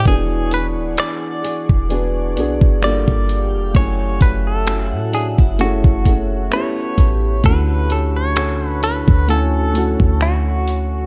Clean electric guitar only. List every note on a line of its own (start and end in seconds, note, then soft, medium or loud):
0.08 0.53 G#4 loud
0.54 0.66 B4 loud
1.00 2.83 D5 loud
2.84 3.76 D5 medium
3.76 4.22 C#5 loud
4.22 4.47 B4 medium
4.47 5.14 A4 medium
5.15 5.27 G#4 medium
5.61 6.55 F#4 medium
6.53 7.45 C#5 medium
7.46 7.92 B4 loud
7.92 8.17 A4 medium
8.16 8.67 C#5 loud
8.67 8.83 B4 loud
8.84 9.30 B4 medium
9.30 10.25 A4 medium
10.22 11.06 F#4 medium